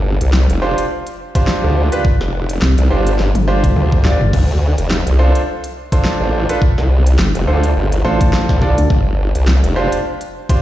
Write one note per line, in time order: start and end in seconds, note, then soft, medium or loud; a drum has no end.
0.00 0.18 G1 loud
0.21 0.47 C2 loud
0.21 closed hi-hat medium
0.33 snare loud
0.50 0.76 F1 loud
0.50 closed hi-hat medium
0.62 0.83 D4 medium
0.62 0.83 F4 medium
0.62 0.83 G4 medium
0.62 0.83 C5 loud
0.78 closed hi-hat medium
1.07 closed hi-hat medium
1.35 1.88 D4 medium
1.35 1.88 F4 medium
1.35 1.88 G4 medium
1.35 1.88 C5 loud
1.35 kick loud
1.35 closed hi-hat medium
1.47 snare loud
1.64 1.90 D2 medium
1.92 2.03 D4 medium
1.92 2.03 F4 medium
1.92 2.03 G4 medium
1.92 2.03 B4 medium
1.92 closed hi-hat medium
2.05 kick loud
2.21 2.60 F1 loud
2.21 snare soft
2.49 closed hi-hat medium
2.62 2.75 C2 loud
2.62 snare loud
2.78 2.88 C2 loud
2.78 closed hi-hat medium
2.90 3.17 G1 loud
2.90 3.11 D4 medium
2.90 3.11 F4 medium
2.90 3.11 G4 medium
2.90 3.11 C5 medium
3.07 closed hi-hat medium
3.19 3.33 G1 loud
3.19 snare medium
3.35 3.74 G1 loud
3.35 closed hi-hat medium
3.35 high tom medium
3.48 4.02 D4 medium
3.48 4.02 F4 medium
3.48 4.02 G4 medium
3.48 4.02 C5 loud
3.64 kick loud
3.64 closed hi-hat medium
3.64 mid tom medium
3.76 4.18 D2 loud
3.76 mid tom medium
3.92 kick loud
4.05 4.19 D4 medium
4.05 4.19 F4 medium
4.05 4.19 G4 medium
4.05 4.19 D5 medium
4.05 kick medium
4.05 snare loud
4.21 4.31 G1 loud
4.21 mid tom medium
4.33 4.76 D2 medium
4.33 kick loud
4.33 crash medium
4.78 5.04 F1 loud
4.78 closed hi-hat medium
4.91 snare loud
5.06 5.33 C2 loud
5.06 closed hi-hat medium
5.19 5.40 D4 medium
5.19 5.40 F4 medium
5.19 5.40 A4 medium
5.19 5.40 C5 loud
5.35 closed hi-hat medium
5.64 closed hi-hat medium
5.92 6.46 D4 medium
5.92 6.46 F4 medium
5.92 6.46 A4 medium
5.92 6.46 C5 loud
5.92 kick loud
5.92 closed hi-hat medium
6.05 snare loud
6.21 6.47 A1 loud
6.49 6.60 D4 medium
6.49 6.60 F4 medium
6.49 6.60 A4 medium
6.49 6.60 B4 medium
6.49 closed hi-hat medium
6.62 kick loud
6.78 7.17 C2 loud
6.78 snare soft
7.07 closed hi-hat medium
7.19 7.32 G1 loud
7.19 snare loud
7.35 7.46 F1 loud
7.35 closed hi-hat medium
7.47 7.74 D2 medium
7.47 7.68 D4 medium
7.47 7.68 F4 medium
7.47 7.68 A4 medium
7.47 7.68 C5 medium
7.63 closed hi-hat medium
7.76 8.03 G1 loud
7.92 closed hi-hat medium
8.05 8.47 A1 loud
8.05 8.59 D4 medium
8.05 8.59 F4 medium
8.05 8.59 A4 medium
8.05 8.59 C5 loud
8.21 kick loud
8.21 closed hi-hat medium
8.33 snare loud
8.49 8.75 C2 loud
8.49 kick loud
8.49 snare soft
8.62 8.76 D4 medium
8.62 8.76 F4 medium
8.62 8.76 A4 medium
8.62 8.76 D5 medium
8.62 kick medium
8.78 8.88 D2 loud
8.78 closed hi-hat medium
8.90 9.33 G1 loud
8.90 kick loud
9.35 9.61 C2 loud
9.35 closed hi-hat medium
9.48 snare loud
9.63 9.90 F1 loud
9.63 closed hi-hat medium
9.76 9.97 D4 medium
9.76 9.97 F4 medium
9.76 9.97 G4 medium
9.76 9.97 C5 loud
9.92 closed hi-hat medium
10.21 closed hi-hat medium
10.49 10.62 D4 medium
10.49 10.62 F4 medium
10.49 10.62 G4 medium
10.49 10.62 C5 loud
10.49 kick loud
10.49 closed hi-hat medium